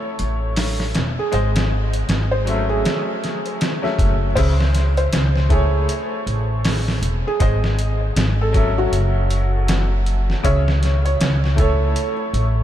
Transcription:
0.00 1.28 A3 medium
0.00 1.29 E4 medium
0.00 1.30 C#5 medium
0.19 0.92 A1 medium
0.19 closed hi-hat medium
0.56 snare loud
0.56 open hi-hat medium
0.80 snare medium
0.95 1.15 E1 medium
0.95 snare loud
0.95 closed hi-hat medium
1.19 1.67 G#4 medium
1.32 2.06 G#1 medium
1.32 1.47 G#3 medium
1.32 1.48 G#4 medium
1.32 1.48 C5 medium
1.32 1.49 D#5 medium
1.32 closed hi-hat medium
1.56 snare loud
1.56 closed hi-hat medium
1.93 closed hi-hat medium
2.09 2.82 G#1 medium
2.09 snare loud
2.09 closed hi-hat medium
2.31 2.65 C5 medium
2.45 3.78 F#3 medium
2.45 3.79 A3 medium
2.45 3.79 C#4 medium
2.45 closed hi-hat medium
2.49 3.80 E5 medium
2.69 4.24 G#4 medium
2.85 snare loud
2.85 closed hi-hat medium
3.24 snare soft
3.24 closed hi-hat medium
3.46 closed hi-hat soft
3.61 snare loud
3.61 closed hi-hat medium
3.82 4.32 F#3 medium
3.82 4.33 A3 medium
3.82 4.33 C#4 medium
3.82 4.33 E5 medium
3.82 snare soft
3.99 4.33 F#1 medium
3.99 kick medium
3.99 closed hi-hat medium
4.35 5.10 C#2 loud
4.35 4.51 C#3 medium
4.35 4.52 C#4 medium
4.35 4.52 G#4 medium
4.35 4.90 C5 medium
4.35 4.53 E5 medium
4.35 kick loud
4.35 closed hi-hat medium
4.35 crash medium
4.61 snare medium
4.75 snare soft
4.75 closed hi-hat medium
4.97 5.46 C5 medium
4.97 closed hi-hat soft
5.13 5.85 C#2 medium
5.13 snare loud
5.13 closed hi-hat medium
5.36 snare soft
5.49 7.36 A3 medium
5.49 7.36 E4 medium
5.49 6.04 G#4 medium
5.49 7.37 G#4 medium
5.49 kick medium
5.49 closed hi-hat medium
5.53 7.38 C#5 medium
5.89 closed hi-hat medium
6.27 6.99 A1 medium
6.27 closed hi-hat medium
6.65 snare loud
6.65 open hi-hat medium
6.88 snare medium
7.02 7.22 E1 medium
7.02 closed hi-hat medium
7.27 7.75 G#4 loud
7.40 8.13 G#1 medium
7.40 7.55 G#3 medium
7.40 7.55 G#4 medium
7.40 7.56 C5 medium
7.40 7.56 D#5 medium
7.40 kick loud
7.40 closed hi-hat medium
7.64 snare soft
7.79 closed hi-hat medium
8.16 8.89 G#1 medium
8.16 snare loud
8.16 closed hi-hat medium
8.41 8.74 A4 medium
8.53 10.40 F#3 medium
8.53 10.40 C#4 medium
8.53 10.41 A4 medium
8.53 kick medium
8.53 closed hi-hat medium
8.57 10.42 E5 medium
8.78 10.32 F#4 medium
8.92 10.32 F#1 medium
8.92 closed hi-hat medium
9.30 closed hi-hat medium
9.68 snare loud
9.68 closed hi-hat medium
10.06 closed hi-hat medium
10.30 snare soft
10.43 11.17 C#2 loud
10.43 10.59 C#3 medium
10.43 10.59 C#4 medium
10.43 10.60 G#4 medium
10.43 10.98 C#5 loud
10.43 10.60 E5 medium
10.43 kick loud
10.43 closed hi-hat medium
10.68 snare medium
10.83 snare soft
10.83 closed hi-hat medium
11.05 11.54 C#5 medium
11.05 closed hi-hat soft
11.20 11.93 C#2 medium
11.20 snare loud
11.20 closed hi-hat medium
11.44 snare soft
11.56 12.63 A3 medium
11.56 12.63 E4 medium
11.56 12.12 A4 medium
11.56 12.63 C#5 medium
11.56 kick loud
11.56 closed hi-hat medium
11.96 closed hi-hat medium
12.33 12.63 A1 loud
12.33 closed hi-hat medium

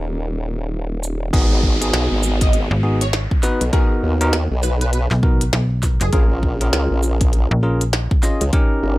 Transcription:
0.00 1.31 D#1 medium
0.00 1.30 C#4 medium
0.00 1.30 D#4 medium
0.00 1.30 G4 medium
0.00 1.30 A#4 medium
1.03 shaker medium
1.33 1.91 G#1 loud
1.33 1.77 B3 medium
1.33 1.77 D#4 medium
1.33 1.77 F#4 medium
1.33 1.77 G#4 loud
1.33 kick loud
1.33 closed hi-hat medium
1.33 crash loud
1.33 downlifter medium
1.63 kick medium
1.81 2.80 B3 medium
1.81 2.80 D#4 medium
1.81 2.80 F#4 medium
1.81 2.80 G#4 medium
1.81 closed hi-hat medium
1.93 2.08 B1 loud
1.93 snare loud
1.93 closed hi-hat medium
2.12 2.68 G#1 loud
2.23 shaker medium
2.41 2.59 D#5 medium
2.41 kick loud
2.41 closed hi-hat medium
2.53 closed hi-hat medium
2.71 3.28 G#1 loud
2.83 3.03 B3 medium
2.83 3.03 D#4 medium
2.83 3.03 F#4 medium
2.83 3.03 G#4 medium
3.01 3.19 C#5 loud
3.01 closed hi-hat medium
3.13 snare loud
3.13 closed hi-hat medium
3.31 kick loud
3.43 3.63 B3 loud
3.43 3.63 D#4 medium
3.43 3.63 F#4 medium
3.43 3.63 B4 loud
3.43 snare medium
3.43 shaker medium
3.61 3.71 B1 loud
3.61 closed hi-hat medium
3.73 4.17 B3 medium
3.73 4.17 D#4 medium
3.73 4.17 F#4 medium
3.73 3.95 G#4 medium
3.73 4.17 A#4 loud
3.73 kick loud
3.73 closed hi-hat medium
4.03 4.48 D#2 loud
4.21 4.35 B3 medium
4.21 4.35 D#4 medium
4.21 4.35 F#4 medium
4.21 4.35 A#4 loud
4.21 closed hi-hat medium
4.33 snare loud
4.33 closed hi-hat medium
4.51 5.08 B1 loud
4.63 4.77 B4 loud
4.63 snare soft
4.63 shaker medium
4.81 4.89 B4 medium
4.81 closed hi-hat medium
4.93 5.05 B4 medium
4.93 closed hi-hat medium
5.11 5.51 B1 loud
5.11 snare medium
5.23 5.43 B3 medium
5.23 5.43 D#4 medium
5.23 5.43 F#4 medium
5.23 5.43 A#4 medium
5.23 kick loud
5.41 closed hi-hat medium
5.53 5.98 B1 loud
5.53 snare loud
5.53 closed hi-hat medium
5.83 kick medium
5.83 snare medium
5.83 shaker medium
6.01 6.11 F#1 loud
6.01 6.09 G#4 medium
6.01 snare soft
6.01 closed hi-hat medium
6.13 6.71 A#1 loud
6.13 6.57 C#4 medium
6.13 6.57 F4 medium
6.13 6.57 G#4 medium
6.13 6.25 G#4 medium
6.13 6.57 A#4 loud
6.13 kick loud
6.13 closed hi-hat medium
6.43 kick medium
6.61 7.60 C#4 medium
6.61 7.60 F4 medium
6.61 7.60 G#4 medium
6.61 7.60 A#4 medium
6.61 closed hi-hat medium
6.73 6.88 C#2 loud
6.73 snare loud
6.73 closed hi-hat medium
6.91 7.48 A#1 loud
7.03 shaker medium
7.21 kick loud
7.21 closed hi-hat medium
7.33 closed hi-hat medium
7.51 8.08 A#1 loud
7.63 7.83 C#4 medium
7.63 7.83 F4 medium
7.63 7.83 G#4 medium
7.63 7.83 A#4 medium
7.81 closed hi-hat medium
7.93 snare loud
7.93 closed hi-hat medium
8.11 kick loud
8.23 8.43 C#4 medium
8.23 8.43 F4 medium
8.23 8.43 G#4 medium
8.23 8.43 D#5 loud
8.23 snare medium
8.23 shaker medium
8.41 8.51 C#2 loud
8.41 closed hi-hat medium
8.53 8.97 C#4 loud
8.53 8.97 D#4 medium
8.53 8.97 G4 medium
8.53 8.97 A#4 loud
8.53 kick loud
8.53 closed hi-hat soft
8.83 8.98 G1 medium

